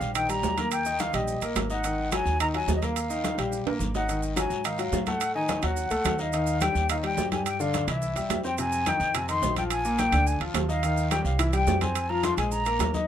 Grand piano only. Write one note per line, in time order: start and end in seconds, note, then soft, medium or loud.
0.00 0.10 G3 medium
0.00 0.10 G4 medium
0.15 0.27 D#3 medium
0.15 0.27 D#4 medium
0.29 0.52 G3 medium
0.29 0.52 G4 medium
0.57 0.80 A#3 medium
0.57 0.81 A#4 medium
0.86 1.09 D#3 medium
0.86 1.09 D#4 medium
1.14 1.37 G3 medium
1.14 1.37 G4 medium
1.42 1.65 A#3 medium
1.42 1.65 A#4 medium
1.70 1.82 D#4 medium
1.70 1.82 D#5 medium
1.84 2.07 D#3 medium
1.84 2.07 D#4 medium
2.12 2.35 F#3 medium
2.12 2.35 F#4 medium
2.40 2.52 D#3 medium
2.40 2.52 D#4 medium
2.54 2.77 F#3 medium
2.54 2.77 F#4 medium
2.83 3.05 A#3 medium
2.83 3.06 A#4 medium
3.10 3.33 D#3 medium
3.10 3.33 D#4 medium
3.38 3.61 G3 medium
3.38 3.61 G4 medium
3.67 3.90 A#3 medium
3.67 3.90 A#4 medium
3.95 4.06 D#4 medium
3.95 4.06 D#5 medium
4.09 4.32 D#3 medium
4.09 4.32 D#4 medium
4.36 4.60 F#3 medium
4.36 4.60 F#4 medium
4.64 4.76 D#3 medium
4.64 4.76 D#4 medium
4.79 5.02 F#3 medium
4.79 5.02 F#4 medium
5.07 5.30 A3 medium
5.07 5.30 A4 medium
5.35 5.58 D#3 medium
5.35 5.58 D#4 medium
5.63 5.86 F#3 medium
5.63 5.86 F#4 medium
5.91 6.14 A3 medium
5.91 6.14 A4 medium
6.19 6.31 D#4 medium
6.19 6.31 D#5 medium
6.33 6.56 D#3 medium
6.33 6.56 D#4 medium
6.61 6.84 G3 medium
6.61 6.85 G4 medium
6.90 7.01 D#3 medium
6.90 7.01 D#4 medium
7.03 7.26 G3 medium
7.03 7.27 G4 medium
7.32 7.55 G3 medium
7.32 7.55 G4 medium
7.60 7.83 D3 medium
7.60 7.83 D4 medium
7.87 8.11 E3 medium
7.87 8.11 E4 medium
8.16 8.39 G3 medium
8.16 8.39 G4 medium
8.45 8.56 C4 medium
8.45 8.56 C5 medium
8.58 8.81 C3 medium
8.58 8.82 C4 medium
8.86 9.09 D#3 medium
8.86 9.10 D#4 medium
9.15 9.26 C3 medium
9.15 9.26 C4 medium
9.28 9.51 D#3 medium
9.28 9.52 D#4 medium
9.57 9.80 F3 medium
9.57 9.80 F4 medium
9.85 10.08 A#2 medium
9.85 10.08 A#3 medium
10.12 10.36 D3 medium
10.12 10.36 D4 medium
10.41 10.64 F3 medium
10.41 10.64 F4 medium
10.69 10.80 D#4 medium
10.69 10.81 D#5 medium
10.83 11.06 D#3 medium
10.83 11.06 D#4 medium
11.11 11.34 G3 medium
11.11 11.34 G4 medium
11.39 11.51 E3 medium
11.39 11.51 E4 medium
11.53 11.76 G3 medium
11.53 11.76 G4 medium
11.82 12.05 C4 medium
11.82 12.05 C5 medium
12.10 12.33 F3 medium
12.10 12.33 F4 medium
12.38 12.61 G#3 medium
12.38 12.61 G#4 medium
12.66 12.89 A#3 medium
12.66 12.89 A#4 medium
12.94 13.06 D#4 medium
12.94 13.06 D#5 medium